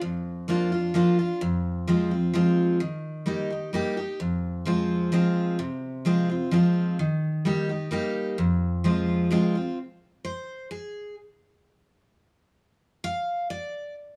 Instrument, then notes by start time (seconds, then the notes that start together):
steel-string acoustic guitar
0.01 F2
0.48 F3 A#3 D4 F4
0.72 D4 F4
0.94 F3 A#3 D4 F4
1.19 D4 F4
1.41 F2
1.87 F3 G#3 C4 F4
2.11 C4 F4
2.34 F3 G#3 C4 F4
2.80 D#3
3.26 G3 A#3 D#4 G4
3.50 D#4 G4
3.73 G3 A#3 D#4 G4
3.97 D#4 G4
4.20 F2
4.65 F3 G#3 C4 F4
5.12 F3 G#3 C4 F4
5.59 C3
6.05 F3 G#3 C4 F4
6.29 C4 F4
6.51 F3 G#3 C4 F4
6.99 D#3
7.45 G3 A#3 D#4 G4
7.69 D#4 G4
7.91 G3 A#3 D#4 G4
8.38 F2
8.84 F3 G#3 C4 F4
9.31 F3 G#3 C4 F4
9.55 C4 F4
10.25 C5
10.71 G#4
13.04 F5
13.50 D5